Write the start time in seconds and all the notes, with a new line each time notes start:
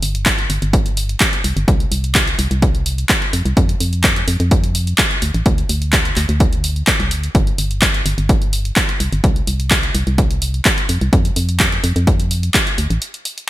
0.03 G1, open hi-hat
0.15 closed hi-hat
0.26 kick, clap, closed hi-hat
0.39 closed hi-hat
0.50 G1, open hi-hat
0.62 G1, closed hi-hat
0.73 kick, closed hi-hat
0.86 closed hi-hat
0.97 open hi-hat
1.09 closed hi-hat
1.20 kick, clap, closed hi-hat
1.33 closed hi-hat
1.44 C2, open hi-hat
1.57 G1, closed hi-hat
1.68 C2, kick, closed hi-hat
1.80 closed hi-hat
1.91 C2, open hi-hat
2.04 closed hi-hat
2.15 kick, clap, closed hi-hat
2.27 closed hi-hat
2.39 C2, open hi-hat
2.51 C2, closed hi-hat
2.62 kick, closed hi-hat
2.75 closed hi-hat
2.86 open hi-hat
2.98 closed hi-hat
3.09 kick, clap, closed hi-hat
3.22 closed hi-hat
3.33 F2, open hi-hat
3.45 C2, closed hi-hat
3.57 F2, kick, closed hi-hat
3.69 closed hi-hat
3.80 F2, open hi-hat
3.93 closed hi-hat
4.04 kick, clap, closed hi-hat
4.16 closed hi-hat
4.28 F2, open hi-hat
4.40 F2, closed hi-hat
4.51 kick, closed hi-hat
4.64 closed hi-hat
4.75 open hi-hat
4.87 closed hi-hat
4.98 kick, clap, closed hi-hat
5.11 closed hi-hat
5.22 D2, open hi-hat
5.34 A1, closed hi-hat
5.46 D2, kick, closed hi-hat
5.58 closed hi-hat
5.69 D2, open hi-hat
5.82 closed hi-hat
5.93 kick, clap, closed hi-hat
6.05 closed hi-hat
6.16 D2, clap, open hi-hat
6.29 D2, closed hi-hat
6.40 kick, closed hi-hat
6.53 closed hi-hat
6.64 open hi-hat
6.76 closed hi-hat
6.87 kick, clap, closed hi-hat
7.00 C2, closed hi-hat
7.11 D2, open hi-hat
7.23 closed hi-hat
7.35 G1, kick, closed hi-hat
7.47 closed hi-hat
7.58 G1, open hi-hat
7.71 closed hi-hat
7.82 kick, clap, closed hi-hat
7.94 closed hi-hat
8.06 G1, open hi-hat
8.18 G1, closed hi-hat
8.29 kick, closed hi-hat
8.42 closed hi-hat
8.53 open hi-hat
8.65 closed hi-hat
8.76 kick, clap, closed hi-hat
8.89 closed hi-hat
9.00 C2, open hi-hat
9.12 G1, closed hi-hat
9.24 C2, kick, closed hi-hat
9.36 closed hi-hat
9.47 C2, open hi-hat
9.60 closed hi-hat
9.71 kick, clap, closed hi-hat
9.83 closed hi-hat
9.95 C2, open hi-hat
10.07 C2, closed hi-hat
10.18 kick, closed hi-hat
10.31 closed hi-hat
10.42 open hi-hat
10.54 closed hi-hat
10.65 kick, clap, closed hi-hat
10.78 closed hi-hat
10.89 F2, open hi-hat
11.01 C2, closed hi-hat
11.13 F2, kick, closed hi-hat
11.25 closed hi-hat
11.36 F2, open hi-hat
11.49 closed hi-hat
11.60 kick, clap, closed hi-hat
11.72 closed hi-hat
11.84 F2, open hi-hat
11.96 F2, closed hi-hat
12.07 kick, closed hi-hat
12.20 closed hi-hat
12.31 open hi-hat
12.43 closed hi-hat
12.54 kick, clap, closed hi-hat
12.67 closed hi-hat
12.78 D2, open hi-hat
12.90 A1, closed hi-hat
13.02 closed hi-hat
13.14 closed hi-hat
13.25 open hi-hat
13.38 closed hi-hat